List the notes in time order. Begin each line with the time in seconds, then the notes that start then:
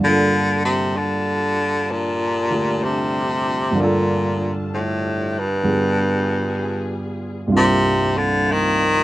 Already playing: G2
0.00 D3 G3 A#3 D4 F4 A5
0.04 D3 F4
0.08 A4
0.65 C3
0.97 D3
1.91 A#2
2.50 D3 A3 D4 G4
2.84 C3
3.71 G2 D3
3.77 F4 A#4
3.81 A#2 A4
4.74 A2
5.39 G2
5.63 G2 D3 G3 B3 F4 G#4
7.48 C2 G2 C3 F3 A#3 C4 D4 F4
7.52 F4
7.57 C3
8.17 D3
8.52 D#3